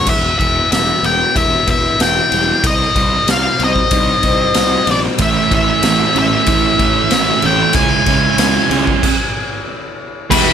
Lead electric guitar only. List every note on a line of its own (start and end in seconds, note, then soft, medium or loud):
0.09 0.38 E5 medium
0.39 0.71 E5 medium
0.72 1.05 E5 medium
1.06 1.34 G5 medium
1.37 1.69 E5 medium
1.71 1.99 E5 medium
2.02 2.67 G5 medium
2.67 3.31 D#5 medium
3.31 3.62 F5 medium
3.64 4.91 D#5 medium
4.91 4.99 D5 medium
5.22 5.53 E5 medium
5.55 6.18 E5 medium
6.19 7.49 E5 medium
7.46 7.74 G5 medium
7.75 9.63 G#5 medium
10.31 10.53 B4 medium